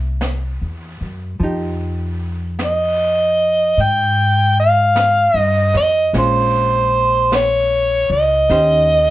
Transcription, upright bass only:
0.00 0.56 C2 medium
0.61 0.98 E2 soft
1.01 1.38 F#2 soft
1.40 3.73 F2 medium
3.77 5.31 G#2 medium
5.34 5.71 G2 soft
5.74 6.11 F2 soft
6.13 8.06 A#1 medium
8.10 8.47 C#2 medium
8.50 9.10 D#2 medium

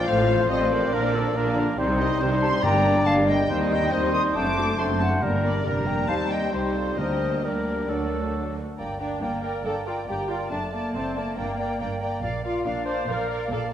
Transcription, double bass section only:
0.07 0.45 A1 medium
0.50 0.88 A1 medium
0.93 1.31 A#1 medium
1.35 1.73 A#1 medium
1.77 2.15 C2 medium
2.20 2.58 C2 medium
2.63 3.01 G1 medium
3.07 3.45 G1 medium
3.50 3.88 D#2 medium
3.93 4.30 D#2 medium
4.36 4.74 F#1 medium
4.80 5.18 F#1 medium
5.22 5.62 G1 medium
5.66 6.09 F1 soft
6.10 6.53 D#2 soft
6.54 6.98 C2 soft
6.98 7.87 D2 soft
7.90 8.57 D2 soft
8.79 9.15 G1 soft
9.22 9.58 G1 soft
9.65 10.01 G1 soft
10.08 10.44 G1 soft
10.50 10.87 F#1 soft
10.94 11.30 F#1 soft
11.37 11.73 G1 soft
11.81 12.16 G1 soft
12.24 12.59 A#1 soft
12.66 13.01 A#1 soft
13.09 13.44 A#1 soft
13.51 13.73 A#1 soft

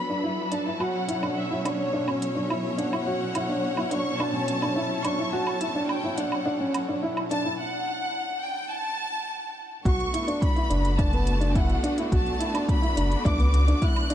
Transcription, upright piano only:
0.10 0.19 D4 medium
0.24 0.43 E4 medium
0.52 0.61 D4 medium
0.66 0.75 E4 medium
0.80 0.99 F#4 medium
1.08 1.18 E4 medium
1.22 1.41 D4 medium
1.51 1.60 E4 medium
1.65 1.84 D4 medium
1.93 2.03 D4 medium
2.07 2.26 C#4 medium
2.35 2.45 D4 medium
2.49 2.69 E4 medium
2.78 2.87 D4 medium
2.92 3.02 E4 medium
3.06 3.25 F#4 medium
3.35 3.44 E4 medium
3.49 3.68 D4 medium
3.77 3.87 E4 medium
3.91 4.10 D4 medium
4.20 4.29 D4 medium
4.34 4.53 C#4 medium
4.62 4.72 D4 medium
4.76 4.95 E4 medium
5.04 5.14 D4 medium
5.19 5.28 E4 medium
5.33 5.52 F#4 medium
5.61 5.71 E4 medium
5.75 5.94 D4 medium
6.04 6.13 E4 medium
6.18 6.37 D4 medium
6.46 6.55 D4 medium
6.60 6.79 C#4 medium
6.88 6.98 D4 medium
7.03 7.22 E4 medium
7.31 7.40 D4 medium
7.45 7.54 E4 medium
9.86 10.05 F#4 medium
10.14 10.23 E4 medium
10.28 10.47 D4 medium
10.56 10.66 E4 medium
10.70 10.89 D4 medium
10.98 11.08 D4 medium
11.13 11.32 B3 medium
11.41 11.50 D4 medium
11.55 11.74 E4 medium
11.83 11.93 D4 medium
11.98 12.07 E4 medium
12.12 12.31 F#4 medium
12.40 12.50 E4 medium
12.54 12.73 D4 medium
12.82 12.92 E4 medium
12.97 13.16 D4 medium
13.25 13.35 D4 loud
13.39 13.58 B3 medium
13.68 13.77 D4 medium
13.82 14.01 E4 medium
14.10 14.14 D4 medium

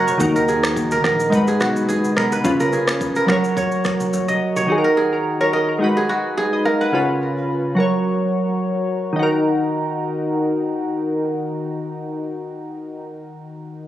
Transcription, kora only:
0.00 0.35 A#4 medium
0.00 0.94 C#5 medium
0.36 0.91 A#4 medium
0.49 1.47 G#4 medium
0.92 1.04 A#4 medium
1.04 2.16 A#4 medium
1.48 1.88 G#4 medium
1.60 3.07 F#4 medium
1.88 2.72 G#4 medium
2.17 2.38 A#4 medium
2.32 2.66 B4 medium
2.60 3.16 A#4 medium
2.73 4.09 G#4 medium
3.16 3.28 A#4 medium
3.29 4.56 A#4 medium
3.57 4.56 C#5 medium
4.28 5.35 D#5 medium
4.56 5.71 C#5 medium
4.84 5.40 A#4 medium
4.97 5.96 G#4 medium
5.41 5.53 A#4 medium
5.53 6.65 A#4 medium
5.97 6.37 G#4 medium
6.09 7.56 F#4 medium
6.37 7.74 G#4 medium
6.65 6.87 A#4 medium
6.81 8.04 B4 medium

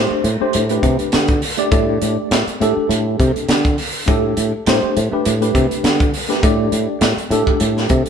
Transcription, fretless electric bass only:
0.11 muted fretless electric bass stroke soft
0.24 0.39 A2 medium
0.41 muted fretless electric bass stroke soft
0.55 0.81 A2 medium
0.83 0.97 C3 loud
1.01 muted fretless electric bass stroke soft
1.14 1.40 D3 medium
1.72 1.98 A2 loud
2.02 2.16 A2 medium
2.31 2.45 A2 medium
2.47 muted fretless electric bass stroke soft
2.61 2.75 A2 medium
2.77 muted fretless electric bass stroke soft
2.89 3.16 A2 medium
3.20 3.34 C3 loud
3.36 muted fretless electric bass stroke soft
3.49 3.75 D3 medium
4.08 4.34 A2 medium
4.37 4.51 A2 medium
4.67 4.81 A2 medium
4.83 muted fretless electric bass stroke soft
4.97 5.11 A2 medium
5.12 muted fretless electric bass stroke soft
5.26 5.52 A2 medium
5.55 5.69 C3 loud
5.71 muted fretless electric bass stroke soft
5.84 6.10 D3 medium
6.43 6.69 A2 medium
6.72 6.87 A2 medium
7.01 7.16 A2 medium
7.17 muted fretless electric bass stroke soft
7.31 7.45 A2 medium
7.47 muted fretless electric bass stroke soft
7.61 7.87 A2 medium
7.90 8.05 C3 medium

